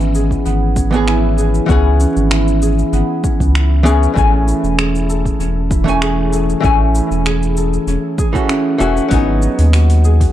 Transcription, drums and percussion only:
0.01 cabasa
0.15 cabasa
0.31 kick, cabasa
0.46 cabasa
0.76 kick, cabasa
0.93 cabasa
1.08 finger snap, cabasa
1.38 cabasa
1.55 cabasa
1.69 kick, cabasa
2.00 cabasa
2.17 cabasa
2.31 finger snap, cabasa
2.48 cabasa
2.62 cabasa
2.79 cabasa
2.93 cabasa
3.24 kick, cabasa
3.40 kick, cabasa
3.55 finger snap, cabasa
3.86 cabasa
4.03 cabasa
4.16 kick, cabasa
4.48 cabasa
4.64 cabasa
4.79 finger snap, cabasa
4.95 cabasa
5.10 cabasa
5.25 kick, cabasa
5.40 cabasa
5.71 kick, cabasa
5.88 cabasa
6.02 finger snap, cabasa
6.33 cabasa
6.50 cabasa
6.64 kick, cabasa
6.95 cabasa
7.12 cabasa
7.26 finger snap, cabasa
7.43 cabasa
7.57 cabasa
7.73 cabasa
7.88 cabasa
8.18 kick, cabasa
8.35 kick, cabasa
8.49 finger snap, cabasa
8.81 cabasa
8.97 cabasa
9.11 kick, open hi-hat, cabasa
9.42 cabasa
9.59 open hi-hat, cabasa
9.73 finger snap, open hi-hat, cabasa
9.90 open hi-hat, cabasa
10.04 cabasa
10.21 kick, open hi-hat, cabasa

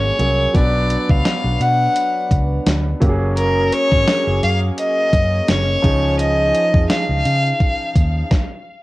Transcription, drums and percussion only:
0.19 closed hi-hat
0.55 kick, closed hi-hat
0.90 closed hi-hat
1.09 kick
1.25 snare, closed hi-hat
1.61 closed hi-hat
1.96 closed hi-hat
2.31 kick, closed hi-hat
2.66 snare, closed hi-hat
3.02 kick, closed hi-hat
3.37 closed hi-hat
3.72 closed hi-hat
3.92 kick
4.08 snare, closed hi-hat
4.43 closed hi-hat
4.78 closed hi-hat
5.13 kick, closed hi-hat
5.48 snare, closed hi-hat
5.84 kick, closed hi-hat
6.19 closed hi-hat
6.55 closed hi-hat
6.74 kick
6.90 snare, closed hi-hat
7.25 closed hi-hat
7.60 kick, closed hi-hat
7.96 kick, closed hi-hat
8.31 kick, snare

